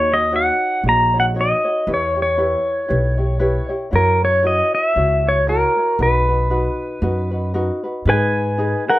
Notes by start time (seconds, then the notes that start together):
Already playing: D#2 D#4 F#4 A#4 C#5
0.11 D#4 F#4 C#5 D#5
0.31 D#4 F#4 A#4 C#5
0.36 F#5
0.84 A#1 D#4 F#4 A#4 C#5
0.89 A#5
1.14 D#4 F#4 C#5
1.20 F#5
1.34 D#4 F#4 A#4 C#5
1.41 D#5
1.64 D#4 F#4 C#5
1.87 E2 E4 G4 B4 C#5
1.94 C#5
2.15 E4 G4 C#5
2.22 C#5
2.37 E4 G4 B4 C#5
2.88 B1 E4 G4 B4 C#5
3.18 E4 G4 C#5
3.39 E4 G4 B4 C#5
3.69 E4 G4 C#5
3.91 F#2 E4 F#4 A#4 C#5
3.96 A#4
4.22 E4 F#4 C#5
4.43 E4 F#4 A#4 C#5 D#5
4.75 D#5
4.86 E5
4.95 C#2 E4 F#4 A#4 C#5
5.25 E4 F#4 C#5
5.48 E4 F#4 A#4 C#5
5.76 E4 F#4 C#5
5.99 B1 D#4 F#4 A#4 B4
6.28 D#4 F#4 B4
6.50 D#4 F#4 B4
7.02 F#2 D#4 F#4 A#4 B4
7.31 D#4 F#4 B4
7.54 D#4 F#4 A#4 B4
7.83 D#4 F#4 B4
8.05 G#2 D#4 G#4 B4
8.10 G#5
8.58 D#4 G#4 A#4 B4
8.87 D#4 G#4 A#4 B4 F#5